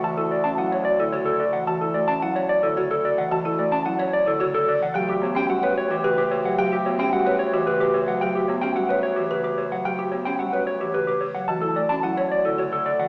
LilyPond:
<<
  \new Staff \with { instrumentName = "Clean electric guitar" } { \time 3/4 \key d \major \tempo 4 = 110 a''16 a'16 d''16 a''16 fis''16 cis''16 d''16 a'16 cis''16 a'16 d''16 fis''16 | a''16 a'16 d''16 a''16 fis''16 cis''16 d''16 a'16 cis''16 a'16 d''16 fis''16 | a''16 a'16 d''16 a''16 fis''16 cis''16 d''16 a'16 cis''16 a'16 d''16 fis''16 | g''16 g'16 cis''16 g''16 fis''16 b'16 cis''16 g'16 b'16 g'16 cis''16 fis''16 |
g''16 g'16 cis''16 g''16 fis''16 b'16 cis''16 g'16 b'16 g'16 cis''16 fis''16 | g''16 g'16 cis''16 g''16 fis''16 b'16 cis''16 g'16 b'16 g'16 cis''16 fis''16 | g''16 g'16 cis''16 g''16 fis''16 b'16 cis''16 g'16 b'16 g'16 cis''16 fis''16 | a''16 a'16 d''16 a''16 fis''16 cis''16 d''16 a'16 cis''16 a'16 d''16 fis''16 | }
  \new Staff \with { instrumentName = "French horn" } { \time 3/4 \key d \major fis'2~ fis'8. r16 | r2. | r2. | g'2.~ |
g'2~ g'8. r16 | r2. | r2. | fis'2. | }
  \new Staff \with { instrumentName = "Marimba" } { \time 3/4 \key d \major fis'16 e'16 r8 e'16 cis''16 r16 e'16 fis'16 a'16 r8 | fis'16 e'16 r8 e'16 cis''16 r16 e'16 fis'16 a'16 r8 | fis'16 e'16 r8 e'16 cis''16 r16 e'16 fis'16 a'16 r8 | g'16 fis'16 r16 g'16 fis'16 cis''16 r16 fis'16 g'16 b'16 r8 |
g'16 fis'16 r16 g'16 fis'16 cis''16 r16 fis'16 g'16 b'16 r8 | g'16 fis'16 r16 g'16 fis'16 cis''16 r16 fis'16 g'16 b'16 r8 | g'16 fis'16 r16 g'16 fis'16 cis''16 r16 fis'16 g'16 b'16 r8 | fis'16 e'16 r16 fis'16 e'16 cis''16 r16 e'16 fis'16 a'16 r8 | }
  \new Staff \with { instrumentName = "Marimba" } { \clef bass \time 3/4 \key d \major e16 r8 cis'16 fis16 r8 d16 cis16 r8 e16 | e16 r16 a16 cis'16 fis16 r8 d16 cis16 r8 e16 | e16 r16 a16 cis'16 fis16 r8 d16 cis16 r8 e16 | fis16 r16 b16 cis'16 g16 r8 e16 cis16 r8 fis16 |
fis16 r16 b16 cis'16 g16 r8 e16 cis16 r8 fis16 | fis16 r16 b16 cis'16 g16 r8 e16 cis16 r8 fis16 | fis16 r16 b16 cis'16 g16 r8 e16 cis16 r8 fis16 | e16 r16 a16 cis'16 fis16 r8 d16 cis16 r8 e16 | }
  \new Staff \with { instrumentName = "Bass clarinet" } { \clef bass \time 3/4 \key d \major d,2.~ | d,2.~ | d,2. | d,2.~ |
d,2.~ | d,2.~ | d,2. | d,2. | }
>>